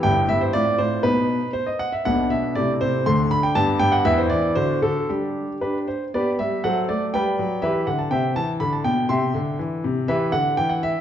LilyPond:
<<
  \new Staff \with { instrumentName = "Grand piano" } { \time 2/4 \key b \phrygian \tempo 4 = 120 << { g''8 e''16 c''16 d''8 c''8 | b'4 c''16 dis''16 fis''16 e''16 | \key g \major fis''8 e''8 d''8 c''8 | c'''8 b''16 g''16 a''8 g''16 fis''16 |
e''16 c''16 d''8 c''8 a'8 | g'4 <d' g' b'>8 c''8 | <g' b' d''>8 e''8 <a' c'' fis''>8 d''8 | <b' d'' g''>4 <g' b' e''>8 fis''16 a''16 |
<c'' e'' g''>8 a''8 b''16 a''16 g''8 | <e'' g'' c'''>4 r4 | \key e \minor <g' b' e''>8 fis''8 g''16 fis''16 e''8 | } \\ { <b e'>4 <c' f'>4 | r2 | <b d'>4 <a e'>4 | <a d'>4 <b d'>4 |
<b e'>4 <d' fis'>4 | r2 | r2 | r2 |
r2 | r2 | r2 | } >> }
  \new Staff \with { instrumentName = "Grand piano" } { \clef bass \time 2/4 \key b \phrygian <g,, g,>8 g,8 a,8 a,8 | <b, b dis'>4 r4 | \key g \major <b,, b,>8 b,8 c8 c8 | <d, d>8 d8 g,8 g,8 |
<e, e>8 e8 d8 d8 | <g d'>4 r4 | b8 g8 fis8 a8 | g8 fis8 e8 d8 |
c8 e8 d8 b,8 | c8 d8 e8 c8 | \key e \minor e8 d8 e4 | }
>>